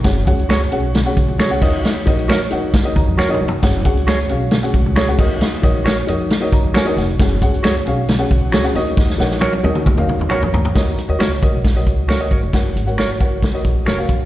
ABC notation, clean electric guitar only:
X:1
M:4/4
L:1/16
Q:1/4=135
K:D#m
V:1 name="Clean electric guitar"
z4 [FGc] z6 z [FGc] z3 | z4 [FAc] z6 z [FAc] z3 | z4 [FGc] z6 z [FGc] z3 | z4 [FAc] z6 z [FAc] z3 |
z4 [FGc] z6 z [FGc] z3 | z4 [FAc] z6 z [FAc] z3 | z4 [FAc] z6 z [FAc] z [FAc]2 | z4 [FAc] z6 z [FAc] z3 |]